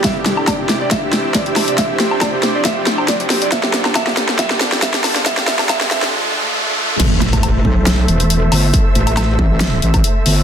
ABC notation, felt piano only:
X:1
M:4/4
L:1/16
Q:"Swing 16ths" 1/4=138
K:Am
V:1 name="Felt piano"
e G G G d G G d e G G G d G z d | e G G G d G G d e G G G d G G d | e G G G e G G G e G G G e G G G | e G e G e G e G z8 |
z16 | z16 |]